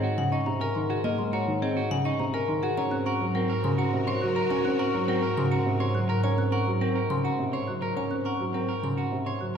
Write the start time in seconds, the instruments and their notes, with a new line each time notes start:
Already playing: double bass G#2
0.03 clean electric guitar F#4
0.18 grand piano C#3, marimba F#5, xylophone G#5
0.32 clean electric guitar D#4, marimba D#5, xylophone C#6
0.46 grand piano C3, xylophone A#5
0.61 clean electric guitar A#4, marimba A#4, xylophone G#5
0.75 grand piano D#3, xylophone C6
0.90 clean electric guitar F#4, marimba G#4, xylophone F#5
1.04 grand piano A#3, clean electric guitar A#4, xylophone D#5, marimba D#5
1.18 grand piano G#3, xylophone C6
1.33 clean electric guitar F#4, marimba C#5, xylophone A#5
1.48 grand piano D#3
1.62 clean electric guitar C4, marimba G#4, xylophone D#5
1.77 clean electric guitar F#4
1.91 grand piano C#3, marimba F#5, xylophone G#5
2.05 clean electric guitar D#4, marimba D#5, xylophone C#6
2.20 grand piano C3, xylophone A#5
2.34 marimba A#4, clean electric guitar A#4, xylophone G#5
2.48 grand piano D#3, xylophone C6
2.63 clean electric guitar F#4, marimba G#4, xylophone F#5
2.77 double bass G#2, grand piano C#4, clarinet F#4, string section F#4 A#4, clean electric guitar C#5, xylophone F#5, marimba A#5
2.91 grand piano C4, xylophone F#6
3.06 clean electric guitar A#4, marimba F#5, xylophone C#6
3.21 grand piano F#3
3.35 clean electric guitar C4, marimba A#4, xylophone F#5
3.50 clean electric guitar A#4
3.64 grand piano C#3, xylophone C6, marimba C6
3.78 clean electric guitar F#4, xylophone F#5, marimba A#5
3.93 grand piano C3
4.07 marimba C5, clean electric guitar C#5, xylophone C6
4.21 grand piano F#3, xylophone F#6
4.36 marimba A#4, clean electric guitar A#4, xylophone A#5
4.50 grand piano C#4, clean electric guitar C#5, xylophone F#5, marimba A#5
4.65 grand piano C4, xylophone F#6
4.79 clean electric guitar A#4, marimba F#5, xylophone C#6
4.94 grand piano F#3
5.08 clean electric guitar C4, marimba A#4, xylophone F#5
5.22 clean electric guitar A#4
5.37 grand piano C#3, xylophone C6, marimba C6
5.51 clean electric guitar F#4, xylophone F#5, marimba A#5
5.66 grand piano C3
5.80 marimba C5, clean electric guitar C#5, xylophone C6
5.95 grand piano F#3, xylophone F#6
6.09 clean electric guitar A#4, marimba A#4, xylophone A#5
6.24 grand piano C#4, clean electric guitar C#5, xylophone F#5, marimba A#5
6.38 grand piano C4, xylophone F#6
6.52 clean electric guitar A#4, marimba F#5, xylophone C#6
6.67 grand piano F#3
6.81 clean electric guitar C4, marimba A#4, xylophone F#5
6.95 clean electric guitar A#4
7.10 grand piano C#3, xylophone C6, marimba C6
7.24 clean electric guitar F#4, xylophone F#5, marimba A#5
7.39 grand piano C3
7.53 marimba C5, clean electric guitar C#5, xylophone C6
7.68 grand piano F#3, xylophone F#6
7.82 clean electric guitar A#4, marimba A#4, xylophone A#5
7.96 grand piano C#4, clean electric guitar C#5, xylophone F#5, marimba A#5
8.11 grand piano C4, xylophone F#6
8.25 clean electric guitar A#4, marimba F#5, xylophone C#6
8.40 grand piano F#3
8.54 clean electric guitar C4, marimba A#4, xylophone F#5
8.69 clean electric guitar A#4
8.83 grand piano C#3, xylophone C6, marimba C6
8.97 clean electric guitar F#4, xylophone F#5, marimba A#5
9.12 grand piano C3
9.26 marimba C5, clean electric guitar C#5, xylophone C6
9.41 grand piano F#3, xylophone F#6